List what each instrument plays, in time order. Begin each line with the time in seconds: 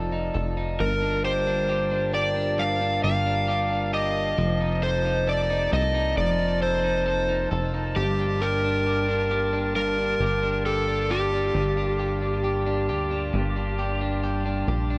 Already playing: analog synth bass F1, brass ensemble F3 C4 D#4 F4 D5 A5, clean electric guitar F3 D#4 A4
0.12 clean electric guitar D#4
0.34 analog synth bass F1, clean electric guitar A4
0.57 clean electric guitar D#4
0.79 analog synth bass G1, clean electric guitar G2, brass ensemble G3 A#3 A#4 A5, electric slide guitar A#4
1.02 clean electric guitar D4
1.24 clean electric guitar G4, electric slide guitar C5
1.47 clean electric guitar D4
1.69 clean electric guitar G4
1.91 clean electric guitar D4
2.13 clean electric guitar G4, electric slide guitar D5
2.36 clean electric guitar D4
2.58 clean electric guitar G2, electric slide guitar F5
2.81 clean electric guitar D4
3.03 analog synth bass G1, clean electric guitar G4, electric slide guitar F5
3.26 clean electric guitar D4
3.48 clean electric guitar G4
3.71 clean electric guitar D4
3.93 clean electric guitar G4, electric slide guitar D#5
4.38 analog synth bass F1, brass ensemble F3 C4 D#4 G4 A5, clean electric guitar F3
4.61 clean electric guitar D#4
4.83 clean electric guitar A4, electric slide guitar C5
5.05 clean electric guitar D#4
5.27 clean electric guitar A4, electric slide guitar D5
5.50 clean electric guitar D#4
5.72 analog synth bass C2, clean electric guitar A4, electric slide guitar D#5
5.94 clean electric guitar D#4
6.17 analog synth bass F1, clean electric guitar F3, brass ensemble F4, electric slide guitar D5
6.39 clean electric guitar D#4
6.62 clean electric guitar A4, electric slide guitar C5
6.84 clean electric guitar D#4
7.06 clean electric guitar A4
7.29 clean electric guitar D#4
7.51 analog synth bass F1, clean electric guitar A4
7.74 clean electric guitar D#4
7.96 analog synth bass G1, clean electric guitar G2, brass ensemble G3 G4, electric slide guitar G4
8.19 clean electric guitar D4
8.42 clean electric guitar G4, electric slide guitar A#4
8.64 clean electric guitar D4
8.86 clean electric guitar G4
9.09 clean electric guitar D4
9.31 clean electric guitar G4
9.53 clean electric guitar D4
9.75 clean electric guitar G2, electric slide guitar A#4
9.98 clean electric guitar D4
10.20 analog synth bass G1, clean electric guitar G4
10.43 clean electric guitar D4
10.66 clean electric guitar G4, electric slide guitar A4
10.88 clean electric guitar D4
11.10 clean electric guitar G4, electric slide guitar G4
11.33 clean electric guitar D4
11.55 analog synth bass G1, clean electric guitar G2
11.77 clean electric guitar D4
11.99 clean electric guitar G4
12.22 clean electric guitar D4
12.44 clean electric guitar G4
12.66 clean electric guitar D4
12.89 analog synth bass D2, clean electric guitar G4
13.11 clean electric guitar D4
13.33 analog synth bass G1, clean electric guitar G2
13.56 clean electric guitar D4
13.79 clean electric guitar G4
14.01 clean electric guitar D4
14.23 clean electric guitar G4
14.46 clean electric guitar D4
14.68 analog synth bass A#1, clean electric guitar G4
14.90 clean electric guitar D4